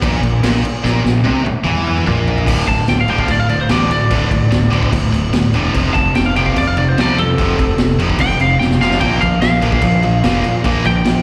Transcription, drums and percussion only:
0.02 kick, crash
0.23 crash
0.43 snare, crash
0.65 crash
0.84 snare
1.05 snare
1.25 high tom
1.46 high tom
1.66 mid tom
1.77 mid tom
1.87 mid tom
1.98 mid tom
2.07 mid tom
2.17 floor tom
2.28 floor tom
2.38 floor tom
2.47 kick, crash
2.68 kick, crash
2.88 snare, crash
3.08 crash
3.18 kick
3.28 kick, crash
3.49 crash
3.69 snare, crash
3.91 crash
4.11 kick, crash
4.31 kick, crash
4.52 snare, crash
4.72 crash
4.83 kick
4.93 kick, crash
5.14 crash
5.33 snare, crash
5.54 crash
5.75 kick, crash
5.95 kick, crash
6.15 snare, crash
6.36 crash
6.46 kick
6.56 kick, crash
6.77 crash
6.98 snare, crash
7.18 crash
7.38 kick, crash
7.59 kick, crash
7.78 snare, crash
8.00 crash
8.10 kick
8.19 kick, crash
8.40 crash
8.60 snare
8.71 snare
8.81 snare
8.90 snare
9.01 kick, crash
9.22 kick, crash
9.42 snare, crash
9.62 crash
9.72 kick
9.82 kick, crash
10.03 crash
10.24 snare, crash
10.44 crash
10.64 kick, crash
10.85 kick, crash
11.05 snare, crash

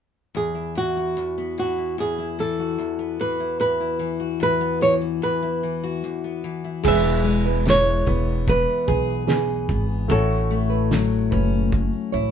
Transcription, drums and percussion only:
6.85 kick, crash
7.05 shaker
7.26 shaker
7.46 shaker
7.67 snare, shaker
7.87 shaker
8.07 kick
8.28 shaker
8.48 kick, shaker
8.69 shaker
8.88 kick, shaker
9.09 shaker
9.28 snare, shaker
9.49 shaker
9.69 kick
9.89 shaker
10.10 kick, shaker
10.31 shaker
10.52 shaker
10.72 shaker
10.91 snare, shaker
11.11 shaker
11.32 kick, shaker
11.53 shaker
11.72 kick, shaker
11.93 shaker
12.13 shaker

